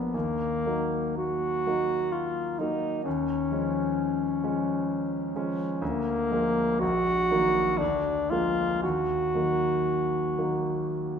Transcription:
0.00 0.16 F3 soft
0.00 0.16 A#3 soft
0.00 0.16 B3 soft
0.00 0.16 D4 soft
0.14 0.64 D#2 soft
0.14 1.17 A#3 soft
0.66 1.63 F#3 soft
0.66 1.63 A#3 soft
0.66 1.63 D#4 soft
1.17 2.14 F#4 medium
1.67 2.56 F#3 soft
1.67 2.56 A#3 soft
1.67 2.57 D#4 soft
2.12 2.60 F4 soft
2.59 3.02 F#3 soft
2.59 3.02 A#3 soft
2.59 3.03 D#4 soft
2.59 3.02 D#4 soft
3.04 3.50 D#2 soft
3.04 5.30 C#4 medium
3.52 4.40 F3 soft
3.52 4.40 G#3 soft
3.52 4.40 C#4 soft
4.43 5.31 F3 soft
4.43 5.31 G#3 soft
4.43 5.32 C#4 soft
5.36 5.77 F3 soft
5.36 5.77 G#3 soft
5.36 5.78 C#4 soft
5.79 6.29 D2 soft
5.79 6.81 A#3 medium
6.31 6.78 F3 soft
6.31 6.78 G#3 soft
6.31 6.78 A#3 soft
6.80 7.29 A#1 soft
6.80 7.79 F#4 medium
7.31 7.76 D#3 soft
7.31 7.76 F#3 soft
7.31 7.77 A#3 soft
7.78 8.29 D2 soft
7.78 8.32 D4 medium
8.30 8.79 F3 soft
8.30 8.79 G#3 soft
8.30 8.79 A#3 soft
8.30 8.82 F4 medium
8.82 9.34 D#2 soft
8.82 11.19 F#4 medium
9.35 10.34 D#3 soft
9.35 10.34 F#3 soft
9.35 10.34 A#3 soft
10.38 11.19 D#3 soft
10.38 11.19 F#3 soft
10.38 11.19 A#3 soft

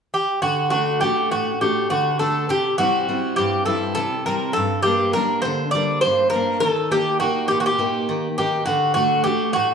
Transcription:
0.14 0.41 G4 medium
0.42 1.00 D3 medium
0.42 0.69 F#4 medium
0.70 1.01 A3 soft
0.70 1.02 D4 soft
0.70 0.99 F#4 medium
0.70 1.01 F#4 soft
1.01 1.49 A3 soft
1.01 1.50 D4 soft
1.01 1.50 F#4 soft
1.01 1.31 G4 medium
1.31 1.89 A2 medium
1.31 1.59 F#4 medium
1.61 2.09 A3 soft
1.61 2.09 D4 soft
1.61 2.09 F#4 medium
1.61 1.90 G4 medium
1.90 2.48 D3 medium
1.90 2.18 F#4 medium
2.19 2.44 A3 soft
2.19 2.44 D4 soft
2.19 2.44 F#4 soft
2.19 2.50 A4 medium
2.49 3.07 C3 medium
2.49 2.78 G4 medium
2.78 3.07 G3 soft
2.78 3.08 C4 soft
2.78 3.08 E4 medium
2.78 3.34 F#4 medium
3.09 3.56 G3 soft
3.09 3.56 C4 soft
3.09 3.57 E4 soft
3.36 3.96 G2 medium
3.36 3.65 G4 medium
3.66 4.15 G3 medium
3.66 4.15 C4 soft
3.66 4.15 E4 soft
3.66 3.94 A4 medium
3.95 4.55 C3 medium
3.95 4.23 A4 medium
4.26 4.51 G3 soft
4.26 4.51 C4 soft
4.26 4.52 E4 medium
4.26 4.53 A#4 medium
4.53 5.14 G2 medium
4.53 4.82 A4 medium
4.83 5.14 G3 soft
4.83 5.15 A#3 soft
4.83 5.15 D4 soft
4.83 5.13 G4 medium
5.13 5.63 G3 soft
5.13 5.63 A#3 soft
5.13 5.63 D4 soft
5.13 5.41 A#4 medium
5.42 6.02 D3 medium
5.42 5.71 C5 medium
5.71 6.22 G3 soft
5.71 6.22 A#3 soft
5.71 6.01 D5 medium
5.76 6.22 D4 soft
6.01 6.62 G2 medium
6.01 6.29 C5 medium
6.30 6.57 G3 soft
6.30 6.60 A#4 medium
6.34 6.57 A#3 soft
6.34 6.58 D4 soft
6.60 7.20 D#3 medium
6.60 6.89 A4 medium
6.91 7.20 A#3 soft
6.91 7.20 D#4 soft
6.91 7.19 G4 medium
6.91 7.21 G4 soft
7.20 7.68 A#3 soft
7.20 7.69 D#4 soft
7.20 7.47 F#4 medium
7.20 7.69 G4 soft
7.48 8.08 A#2 medium
7.48 7.58 G4 medium
7.60 7.66 F#4 medium
7.66 8.37 G4 medium
7.79 8.27 A#3 soft
7.79 8.27 D#4 soft
7.79 8.27 G4 medium
8.09 8.67 D#3 medium
8.38 8.63 A#3 soft
8.38 8.63 D#4 soft
8.38 8.65 G4 medium
8.38 8.63 G4 soft
8.66 9.25 D3 medium
8.66 8.93 F#4 medium
8.94 9.24 A3 soft
8.94 9.25 D4 soft
8.94 9.23 F#4 medium
8.94 9.26 F#4 medium
9.24 9.73 A3 soft
9.24 9.74 D4 soft
9.24 9.74 F#4 soft
9.24 9.53 G4 medium
9.53 9.74 A2 medium
9.53 9.74 F#4 medium

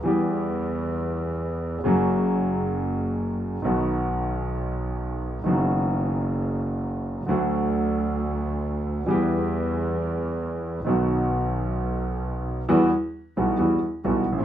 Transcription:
0.03 1.76 E2 medium
0.03 1.76 E3 medium
0.03 1.76 G3 soft
0.03 1.76 B3 soft
0.08 1.77 G4 medium
1.84 3.55 F#1 medium
1.84 3.55 F#2 medium
1.84 3.54 C#3 medium
1.84 3.55 F#3 medium
1.84 3.56 A#3 medium
1.88 3.56 F#4 medium
3.62 5.37 B1 medium
3.62 5.37 B2 medium
3.62 5.36 D#3 medium
3.62 5.37 F#3 soft
3.62 5.38 B3 soft
3.67 5.38 F#4 medium
5.44 7.19 F#1 medium
5.44 7.20 F#1 medium
5.44 7.20 F#2 medium
5.44 7.18 D#3 medium
5.44 7.19 F#3 soft
5.44 7.20 B3 soft
5.48 7.21 F#4 medium
7.28 8.99 D2 medium
7.28 9.00 D2 medium
7.28 9.00 D3 medium
7.28 8.99 F#3 soft
7.28 9.00 A3 soft
7.28 9.00 F#4 medium
9.06 10.78 E2 medium
9.06 9.08 E3 medium
9.06 10.78 E3 medium
9.06 10.77 G3 medium
9.06 10.78 B3 soft
9.10 10.79 G4 medium
10.85 12.60 B1 medium
10.85 12.59 B2 medium
10.85 12.59 D#3 medium
10.85 12.59 F#3 soft
10.85 12.60 B3 soft
10.85 12.60 F#4 medium
12.69 12.88 E2 medium
12.69 12.88 E2 loud
12.69 12.88 E3 medium
12.69 12.88 G3 medium
12.69 12.88 B3 medium
12.69 12.88 F#4 medium
13.37 13.56 B1 medium
13.37 13.56 B2 medium
13.37 13.56 E3 soft
13.37 13.56 G3 soft
13.37 13.56 B3 soft
13.37 13.56 F#4 medium
13.58 13.78 E2 medium
13.58 13.78 E3 medium
13.58 13.78 G3 soft
13.58 13.78 B3 soft
13.58 13.78 F#4 medium
14.04 14.23 B1 medium
14.04 14.23 B2 medium
14.04 14.23 E3 soft
14.04 14.23 G3 soft
14.04 14.23 B3 soft
14.04 14.23 F#4 medium
14.28 14.45 A#1 medium
14.32 14.38 A1 medium
14.38 14.44 A#1 medium

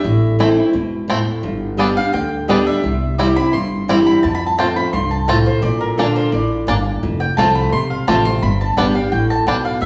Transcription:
0.00 0.36 E5 loud
0.04 0.57 A1 loud
0.04 0.71 A2 medium
0.39 0.57 E3 medium
0.39 0.57 A3 medium
0.39 0.48 A3 medium
0.39 0.57 C4 medium
0.39 0.48 C4 medium
0.39 0.55 E4 medium
0.39 0.48 E4 medium
0.56 0.74 C4 medium
0.56 0.73 E4 medium
0.73 1.27 E1 medium
0.73 1.07 B2 medium
1.08 1.42 A2 medium
1.08 1.17 A3 medium
1.08 1.18 C4 medium
1.08 1.18 E4 medium
1.43 1.96 G1 medium
1.43 2.10 G2 medium
1.77 1.96 G3 medium
1.77 1.87 G3 medium
1.77 1.96 B3 medium
1.77 1.87 B3 medium
1.77 1.96 D4 medium
1.77 1.88 D4 medium
1.77 1.95 G4 medium
1.77 1.96 D#5 medium
1.96 2.14 D4 medium
1.96 2.13 G4 medium
1.96 2.13 F5 loud
2.13 2.67 D2 medium
2.13 2.80 D3 medium
2.13 2.46 G5 loud
2.48 2.82 G3 medium
2.48 2.57 G3 medium
2.48 2.82 B3 medium
2.48 2.57 B3 medium
2.48 2.82 D4 loud
2.48 2.58 D4 medium
2.48 2.82 G4 loud
2.48 2.67 D#5 medium
2.67 3.15 E5 medium
2.84 3.36 C2 medium
2.84 3.50 C3 medium
3.18 3.36 E3 medium
3.18 3.27 G3 medium
3.18 3.36 G3 medium
3.18 3.27 C4 medium
3.18 3.37 C4 medium
3.18 3.27 E4 medium
3.18 3.35 E4 medium
3.18 3.36 D6 loud
3.36 3.54 C4 medium
3.36 3.53 E4 medium
3.36 3.53 B5 loud
3.53 4.07 G1 medium
3.53 4.20 G2 medium
3.53 4.03 C6 loud
3.88 4.22 E3 medium
3.88 4.22 G3 medium
3.88 3.97 G3 medium
3.88 4.22 C4 medium
3.88 3.97 C4 medium
3.88 3.97 E4 medium
3.88 4.23 E4 loud
4.06 4.23 B5 loud
4.23 4.90 F2 medium
4.23 4.76 F2 loud
4.23 4.34 A5 loud
4.35 4.46 B5 loud
4.46 4.58 A5 medium
4.58 4.76 F3 medium
4.58 4.76 A3 medium
4.58 4.67 A3 medium
4.58 4.76 C4 medium
4.58 4.67 C4 medium
4.58 4.75 F4 medium
4.58 4.67 F4 medium
4.58 4.76 G5 medium
4.76 4.94 C4 medium
4.76 4.93 F4 medium
4.76 4.93 B5 loud
4.93 5.46 C2 medium
4.93 5.27 G2 medium
4.93 5.10 C6 loud
5.11 5.27 A5 medium
5.28 5.61 A2 loud
5.28 5.37 A3 medium
5.28 5.37 C4 medium
5.28 5.37 F4 medium
5.28 5.46 F5 medium
5.46 5.62 C5 medium
5.62 6.16 A#1 medium
5.62 6.29 A#2 medium
5.62 5.81 D5 loud
5.81 5.97 A#4 medium
5.97 6.31 D3 medium
5.97 6.32 A#3 medium
5.97 6.07 A#3 medium
5.97 6.32 D4 medium
5.97 6.07 D4 medium
5.97 6.32 F4 medium
5.97 6.15 A4 medium
6.16 6.32 C5 medium
6.32 6.63 A1 medium
6.32 6.66 A2 medium
6.32 6.99 D5 medium
6.67 6.98 G1 medium
6.67 7.01 G2 medium
6.67 6.76 A#3 medium
6.67 6.76 D4 medium
7.03 7.29 F1 medium
7.03 7.69 F2 medium
7.20 7.37 G5 loud
7.37 7.68 C2 medium
7.37 7.71 F3 medium
7.37 7.71 A3 medium
7.37 7.46 A3 medium
7.37 7.71 C4 medium
7.37 7.46 C4 medium
7.37 7.71 F4 medium
7.37 7.46 F4 medium
7.37 7.55 A5 medium
7.55 7.72 B5 medium
7.72 8.02 B1 medium
7.72 8.39 C3 medium
7.72 7.90 C6 loud
7.90 8.07 F5 medium
8.07 8.37 A1 medium
8.07 8.25 F3 medium
8.07 8.16 A3 medium
8.07 8.26 A3 medium
8.07 8.16 C4 medium
8.07 8.26 C4 loud
8.07 8.16 F4 medium
8.07 8.26 F4 loud
8.07 8.25 A5 medium
8.25 8.43 C4 medium
8.25 8.42 F4 medium
8.25 8.42 C6 loud
8.42 8.69 G1 loud
8.42 9.09 G2 medium
8.42 8.60 B5 loud
8.61 8.77 A5 loud
8.77 9.07 G1 medium
8.77 8.95 G3 medium
8.77 8.86 G3 medium
8.77 8.95 B3 medium
8.77 8.86 B3 medium
8.77 8.86 D4 medium
8.77 8.95 D4 medium
8.77 8.94 G4 medium
8.77 8.95 G5 loud
8.95 9.12 D4 medium
8.95 9.11 G4 medium
8.95 9.11 F5 medium
9.12 9.42 A1 medium
9.12 9.45 A2 medium
9.12 9.30 G5 medium
9.30 9.46 A5 loud
9.47 9.77 B1 medium
9.47 9.80 B2 medium
9.47 9.56 G3 medium
9.47 9.56 B3 medium
9.47 9.56 D4 medium
9.47 9.64 G5 medium
9.65 9.81 F5 loud
9.81 9.86 C2 loud
9.81 9.86 C3 medium
9.81 9.86 E5 medium

